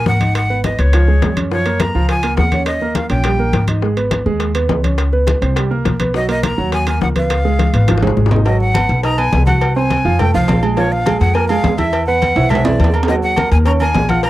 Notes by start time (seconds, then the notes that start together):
Already playing: A#3 A#4
0.06 G#1 F#5, high bongo, low bongo, high conga
0.20 D#4 D#5, high bongo, high conga, high timbale
0.35 F#5, high bongo, high conga, high timbale
0.50 B3 B4, high bongo, high conga
0.64 D#5, high bongo, high conga, high timbale
0.79 C#2 B3 B4 C#5, high bongo, high conga, high timbale
0.93 F3 F4, high bongo, high conga, high timbale
1.08 G#3 G#4, high conga
1.22 F#2, high bongo, low bongo, high conga, high timbale, low timbale
1.37 C#4 C#5, high bongo, high conga, high timbale
1.51 F3 F4 C#5, high bongo, high conga
1.66 A#3 A#4, high bongo, high conga, high timbale
1.80 A#5, high bongo, high conga, high timbale
1.95 C#2 F3 F4, high conga
2.09 G#5, high bongo, high conga, high timbale
2.23 A#3 A#4, high bongo, high conga, high timbale
2.37 D#2 F#5, high bongo, low bongo, high conga, low timbale
2.52 C#4 C#5, high bongo, high conga, high timbale
2.66 D#5, high bongo, high conga, high timbale
2.81 A#3 A#4, high bongo, high conga
2.95 F5, high bongo, high conga, high timbale
3.10 A#1 C#4 C#5 G5, high bongo, high conga, high timbale
3.24 G3 G4, high bongo, high conga, high timbale
3.39 A#3 A#4, high conga
3.53 G#1, high bongo, low bongo, high conga, high timbale
3.68 D#4 D#5, high bongo, high conga, high timbale
3.82 G#3 G#4, high bongo, high conga
3.97 B3 B4, high bongo, high conga, high timbale
4.11 high bongo, high conga, high timbale
4.26 D#2 G#3 G#4, high conga
4.40 high bongo, high conga, high timbale
4.55 B3 B4, high bongo, high conga, high timbale
4.69 C#2, high bongo, low bongo, high conga, low timbale
4.84 C#4 C#5, high bongo, high conga, high timbale
4.98 high bongo, high conga, high timbale
5.13 B3 B4, high bongo, high conga
5.27 high bongo, high conga, high timbale
5.42 C2 C4 C5, high bongo, high conga, high timbale
5.56 G3 G4, high bongo, high conga, high timbale
5.71 A#3 A#4, high conga
5.85 B1, high bongo, low bongo, high conga, high timbale
6.00 B3 B4, high bongo, high conga, high timbale
6.14 F#3 F#4 D#5, high bongo, high conga
6.28 A#3 A#4 D#5, high bongo, high conga, high timbale
6.43 A#5, high bongo, high conga, high timbale
6.58 D#2 F#3 F#4, high conga
6.72 G#5, high bongo, high conga, high timbale
6.87 A#3 A#4 G#5, high bongo, high conga, high timbale
7.01 C#2 F#5, high bongo, low bongo, high conga
7.16 B3 B4 F5, high bongo, high conga, high timbale
7.30 high bongo, high conga, high timbale
7.45 G#3 G#4, high bongo, high conga
7.59 high bongo, high conga, high timbale
7.73 G#1 B3 B4, high bongo, high timbale
7.88 F3 F4, high bongo, high conga, high timbale
7.98 high bongo
8.02 G#3 G#4, low conga, high timbale
8.07 low bongo
8.17 G#1, low bongo, low conga
8.26 low bongo
8.31 D#4 D#5, low conga, low timbale
8.36 low bongo
8.45 F#3 F#4 D#5 F#5, cowbell, high conga, low agogo
8.60 F#5, high conga
8.74 B3 B4 B5, cowbell, high conga, low timbale, low agogo
8.89 B1, cowbell, high conga
9.03 D#4 D#5 A#5 D#6, cowbell, high conga, low agogo
9.18 B3 B4 G#5 B5, high conga, low agogo
9.33 C2, cowbell, high conga, low timbale
9.46 F#4 F#5 F#6, cowbell, high conga, low agogo
9.61 cowbell, high conga, low agogo
9.76 C4 C5 G#5 C6, high conga
9.90 cowbell, high conga, low timbale, low agogo
10.05 F2 F3 F4 F5
10.19 A3 A4 G5 A5, cowbell, high conga, low conga, low agogo
10.34 C2 F3 F4 F5, high conga
10.48 A#1, cowbell, high conga, low timbale, low agogo
10.63 G#3 G#4 G#5, high conga, low agogo
10.77 F3 F4 C#5 F5, cowbell, high conga, low agogo
10.92 F5, high conga
11.06 G#3 G#4 G#5, cowbell, high conga, low timbale, low agogo
11.20 F2 F#5, cowbell, high conga
11.34 A#3 A#4 G#5 A#5, cowbell, high conga, low agogo
11.48 G#3 G#4 F5 G#5, high conga, low agogo
11.64 E2, cowbell, high conga, low timbale
11.78 E4 E5 E6, cowbell, high conga, low agogo
11.93 cowbell, high conga, low agogo
12.06 B3 B4 F#5 B5, high conga
12.22 cowbell, high conga, low timbale, low agogo
12.36 B1 E3 E4 E5, high timbale
12.49 G#3 G#4 E5 G#5, cowbell, high conga, low conga, low agogo
12.55 high timbale
12.64 E3 E4 D5 E5, high conga, low conga, low timbale
12.79 D#2, cowbell, high conga, low agogo
12.84 low timbale
12.94 A#3 A#4 A#5, high conga, low agogo
13.03 low timbale
13.08 F#3 F#4 D#5 F#5, cowbell, high conga, low agogo
13.23 F#5, high conga
13.36 A#3 A#4 A#5, cowbell, high conga, low timbale, low agogo
13.51 D#2 G#5, cowbell, high conga
13.66 C#4 C#5 A#5 C#6, cowbell, high conga, low agogo
13.80 A#3 A#4 G#5 A#5, high conga, low agogo
13.94 A#1, cowbell, high conga, low timbale
14.09 F4 F5 F#5 F6, cowbell, high conga, low agogo
14.23 A#5, cowbell, high conga, low agogo